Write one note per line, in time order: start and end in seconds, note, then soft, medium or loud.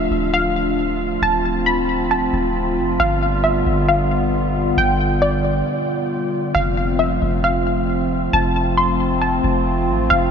0.00 2.96 F3 medium
0.00 2.96 A3 medium
0.00 1.20 D4 medium
0.00 6.51 F4 medium
0.00 0.31 E5 medium
0.11 1.18 D1 loud
0.34 1.18 F5 medium
1.22 2.29 D1 loud
1.22 2.98 C4 medium
1.22 1.64 A5 loud
1.66 2.08 B5 medium
2.11 2.96 A5 medium
2.33 2.79 D1 loud
2.77 2.99 F1 loud
3.00 3.64 G1 loud
3.00 6.52 D3 medium
3.00 6.52 G3 medium
3.00 6.52 B3 medium
3.00 3.42 F5 loud
3.44 3.86 E5 medium
3.66 4.73 G1 loud
3.89 4.73 F5 medium
4.77 5.63 G1 loud
4.77 5.20 G5 loud
5.22 6.07 D5 medium
6.55 7.19 F1 loud
6.55 10.31 F3 medium
6.55 10.31 A3 medium
6.55 10.31 C4 medium
6.55 10.31 F4 medium
6.55 6.97 F5 loud
6.99 7.41 E5 medium
7.22 8.29 F1 loud
7.44 8.29 F5 medium
8.33 9.40 F1 loud
8.33 8.75 A5 loud
8.77 9.19 C6 medium
9.22 10.07 A5 medium
9.44 9.90 F1 loud
9.89 10.10 A1 loud
10.10 10.31 F1 loud
10.10 10.31 F5 loud